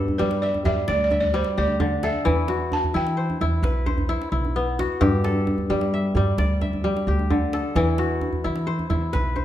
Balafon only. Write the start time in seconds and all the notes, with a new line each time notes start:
0.18 B4
0.42 D5
0.65 E5
0.89 D5
1.04 D5
1.21 D5
1.35 C5
1.58 D5
2.04 E5
2.73 A5
2.96 G5